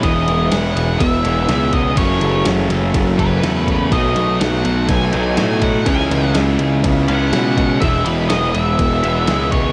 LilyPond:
<<
  \new Staff \with { instrumentName = "Lead electric guitar" } { \time 4/4 \key e \major \tempo 4 = 123 dis''4 fis''4 e''4. dis''8 | cis''4 r4. b'4. | dis''4 fis''4 gis''4. fis''8 | gis''4 r4. fis''4. |
e''8 b'8 dis''8 e''2 cis''8 | }
  \new Staff \with { instrumentName = "Clean electric guitar" } { \time 4/4 \key e \major r8 gis'4 gis'8 b4 gis'8 dis'8 | e8 a'8 cis'8 a'8 a8 cis'8 a'8 cis'8 | fis8 fis'8 dis'8 fis'8 a8 dis'8 fis'8 dis'8 | e8 gis'8 cis'8 gis'8 b8 cis'8 gis'8 cis'8 |
e8 gis'4 gis'8 b4 gis'8 dis'8 | }
  \new Staff \with { instrumentName = "Overdriven electric guitar" } { \clef bass \time 4/4 \key e \major <e gis b e'>2~ <e gis b e'>8 <e gis b e'>8 <e gis b e'>4 | <fis, cis fis a cis'>2~ <fis, cis fis a cis'>8 <fis, cis fis a cis'>8 <fis, cis fis a cis'>4 | <b, fis a dis'>2~ <b, fis a dis'>8 <b, fis a dis'>8 <b, fis a dis'>4 | <cis gis cis' e'>2~ <cis gis cis' e'>8 <cis gis cis' e'>8 <cis gis cis' e'>4 |
<e gis b e'>2~ <e gis b e'>8 <e gis b e'>8 <e gis b e'>4 | }
  \new Staff \with { instrumentName = "Distorted electric guitar" } { \clef bass \time 4/4 \key e \major <e, b, e>2 <e, b, e>2 | <fis, cis fis>2 <fis, cis fis>2 | <b, fis b>2 <b, fis b>2 | <cis gis cis'>2 <cis gis cis'>2 |
<e, b, e>2 <e, b, e>2 | }
  \new Staff \with { instrumentName = "Picked electric bass" } { \clef bass \time 4/4 \key e \major e,,8 e,,8 e,,8 e,,8 e,,8 e,,8 cis,4 | fis,,8 fis,,8 fis,,8 fis,,8 fis,,8 fis,,8 e,4 | b,,8 b,,8 b,,8 b,,8 b,,8 b,,8 a,4 | cis,8 cis,8 cis,8 cis,8 cis,8 cis,8 b,4 |
e,,8 e,,8 e,,8 e,,8 e,,8 e,,8 cis,4 | }
  \new DrumStaff \with { instrumentName = "Drums" } \drummode { \time 4/4 <bd cymr>8 cymr8 <cymr sn>8 cymr8 <bd cymr>8 cymr8 <cymr sn>8 <bd cymr>8 | <bd cymr>8 cymr8 <cymr sn>8 cymr8 <bd cymr>8 <bd cymr>8 <cymr sn>8 <bd cymr>8 | <bd cymr>8 cymr8 <cymr sn>8 cymr8 <bd cymr>8 cymr8 <cymr sn>8 <bd cymr>8 | <bd cymr>8 cymr8 <cymr sn>8 cymr8 <bd cymr>8 cymr8 <cymr sn>8 <bd cymr>8 |
<bd cymr>8 cymr8 <cymr sn>8 cymr8 <bd cymr>8 cymr8 <cymr sn>8 <bd cymr>8 | }
>>